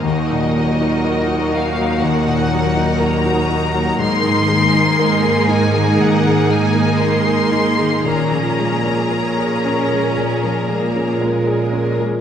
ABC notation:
X:1
M:4/4
L:1/16
Q:1/4=60
K:Bbm
V:1 name="Violin section"
e6 f2 g4 b4 | c'6 a2 g2 a2 c'4 | b12 z4 |]
V:2 name="Violin section"
[GB]16 | [AB]16 | [AB]16 |]
V:3 name="Harp"
[E,B,EB] G, E B G e B G, E, E G, B G e B G, | A,, E, A, E B A E E, A,, A, E, E B A E E, | B,, F, A, D B A D F, B,, A, F, D B A D F, |]
V:4 name="Grand piano"
E,, B,, G, E B G E G, E,, B,, G, E B G E G, | A,, E, A, E B A E A, A,, E, A, E B A E A, | B,, F, A, D B A D A, B,, F, A, D B A D A, |]
V:5 name="Viola section"
[B,E]16 | [B,E]16 | [B,D]4 D6 B,2 A,4 |]
V:6 name="Cello section" clef=bass
E,,16 | A,,16 | B,,16 |]